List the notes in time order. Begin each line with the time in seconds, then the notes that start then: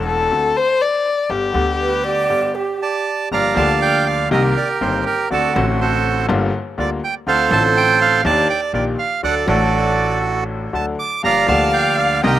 Already playing: E1 E2 E3 A3 C#4 A4
0.07 A4
0.31 D2 D3 A3 C4 F#4
0.56 C5
0.81 D5
1.29 G1 G2 D3 G3 B3 G4
1.54 D2 D3 G3 B3 G4
1.80 B4
2.04 D5
2.30 G1 G2 D3 G3 B3 G4
2.55 G4
2.82 D5 A5
3.31 G1 G2 F3 A#3 D4 G4 D5 F5 A#5
3.54 D2 D3 F3 A#3 D4 A5
3.58 G4
3.82 G5
4.06 F5
4.31 C2 C3 D#3 A#3 C4 G4 A#4 D#5
4.57 D5
4.81 G1 G2 D#3 A#3 C4 G4 C5
5.06 A#4
5.30 D2 D3 A3 C4 F#4 A4 D5
5.54 A1 A2 D3 A3 C4 A4
5.58 F#4
5.81 F#4 A4 C5
6.28 G1 G2 D3 G3 A#3 F4
6.78 D2 D3 G3 A#3 F4 D5
7.04 G5
7.27 D2 D3 A3 C4 F4 A4 C5 F5
7.49 A1 A2 D3 A3 C4 A5
7.53 F4
7.77 G5
8.01 F5
8.25 D#2 D#3 A#3 D4 G4 D5 A5
8.50 G5
8.73 A#1 A#2 D#3 A#3 D4 G4 D5
8.99 F5
9.23 D2 D3 F#3 A3 D4 A4 D5 F#5
9.46 A1 A2 F#3 A3 D4 F#4 A4 D5
10.73 D2 D3 F#3 A3 D4 A4 A5
10.99 D6
11.23 G1 G2 F3 A#3 D4 G4 D5 F5 A#5
11.46 D2 D3 F3 A#3 D4 A5
11.51 G4
11.73 G5
11.98 F5
12.23 C2 C3 D#3 A#3 C4 G4 A#4 D#5 G5